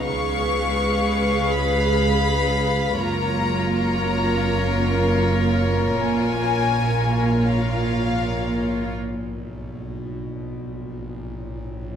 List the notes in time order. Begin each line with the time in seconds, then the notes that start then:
0.04 C#2 C#3 G#3 G#4 B4 F5 C#6
1.52 B5
2.99 F#1 F#2 A#3 F4 A#4 C#5 A#5
3.75 A#5
5.95 A#1 A#2 G#5
7.44 F5
8.95 B1
10.48 A#1